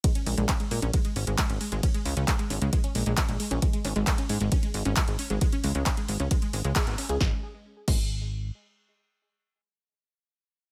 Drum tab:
CC |----------------|----------------|----------------|----------------|
RD |x---x---x---x---|x---x---x---x---|x---x---x---x---|x---x---x---x---|
HH |xxoxxxoxxxoxxxox|xxoxxxoxxxoxxxox|xxoxxxoxxxoxxxox|xxoxxxoxxxoxxxox|
CP |----x-------x---|----x-------x---|----x-------x---|----x-------x---|
SD |----------------|----------------|----------------|----------------|
BD |o---o---o---o---|o---o---o---o---|o---o---o---o---|o---o---o---o---|

CC |------x---------|----------------|
RD |----------------|----------------|
HH |----------------|----------------|
CP |----------------|----------------|
SD |o---------------|----------------|
BD |o-----o---------|----------------|